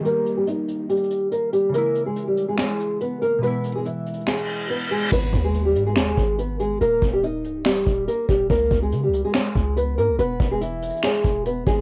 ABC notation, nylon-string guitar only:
X:1
M:4/4
L:1/16
Q:1/4=142
K:G#m
V:1 name="Nylon-string guitar"
[A,A]3 [=G,=G] [Dd]4 [G,G]4 [A,A]2 [G,G]2 | [A,A]3 [G,G]2 [=G,=G]2 [^G,^G] [G,G]4 [B,B]2 [A,A]2 | [B,B]3 [G,G] [E,E]4 [G,G]4 [B,B]2 [G,G]2 | [B,B]3 [G,G]2 [=G,=G]2 [^G,^G] [G,G]4 [B,B]2 [G,G]2 |
[A,A]3 [=G,=G] [Dd]4 [G,G]4 [A,A]2 [G,G]2 | [A,A]3 [G,G]2 [=G,=G]2 [^G,^G] [G,G]4 [B,B]2 [A,A]2 | [B,B]3 [G,G] [E,E]4 [G,G]4 [B,B]2 [G,G]2 |]